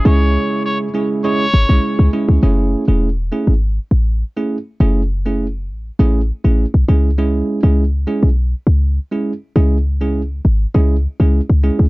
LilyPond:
<<
  \new Staff \with { instrumentName = "Trumpet" } { \time 4/4 \key fis \dorian \tempo 4 = 101 cis''4 cis''8 r8 cis''4. r8 | r1 | r1 | r1 |
r1 | }
  \new Staff \with { instrumentName = "Brass ensemble" } { \time 4/4 \key fis \dorian <cis cis' e' gis'>1 | r1 | r1 | r1 |
r1 | }
  \new Staff \with { instrumentName = "Tine electric piano" } { \time 4/4 \key fis \dorian <gis cis' e' gis'>4. <gis cis' e' gis'>8 <gis cis' e' gis'>16 r8 <gis cis' e' gis'>8. <gis cis' e' gis'>8 | <a cis' e' gis'>8. <a cis' e' gis'>16 r8 <a cis' e' gis'>16 r4. <a cis' e' gis'>16 r8 | <a cis' e' gis'>16 r8 <a cis' e' gis'>16 r4 <a cis' e' gis'>16 r8 <a cis' e' gis'>16 r8 <gis cis' e' gis'>16 r16 | <gis cis' e' gis'>8. <gis cis' e' gis'>16 r8 <gis cis' e' gis'>16 r4. <gis cis' e' gis'>16 r8 |
<gis cis' e' gis'>16 r8 <gis cis' e' gis'>16 r4 <gis cis' e' gis'>16 r8 <gis cis' e' gis'>16 r8 <gis cis' e' gis'>16 r16 | }
  \new Staff \with { instrumentName = "808-style bass" } { \clef bass \time 4/4 \key fis \dorian cis,8. r4. r16 gis,,16 b,,16 r16 cis,16 r16 cis,16 | fis,,8. e,,4 gis,,8. a,,8. r8. | fis,,4. a,,8 a,,8. a,,8 b,,16 cis,8~ | cis,8. cis,4 b,,8. cis,8. r8. |
cis,4. gis,,8 cis,8. cis,8 cis,8 cis,16 | }
>>